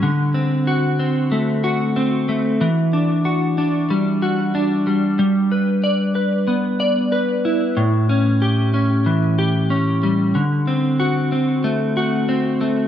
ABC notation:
X:1
M:4/4
L:1/8
Q:1/4=93
K:Dmix
V:1 name="Clean electric guitar"
D, C F C A, F C A, | E, D F D G, F D G, | G, B d B B, d B E | A,, ^C G C E, G C G, |
D, C F C A, F C A, |]